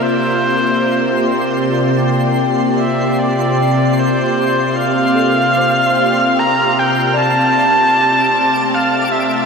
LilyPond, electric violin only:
\new Staff \with { instrumentName = "Electric violin" } { \time 3/4 \key c \mixolydian \tempo 4 = 76 c''2 r4 | r8 e''8 d''4 c''4 | f''2 bes''8 g''8 | a''2 f''8 e''8 | }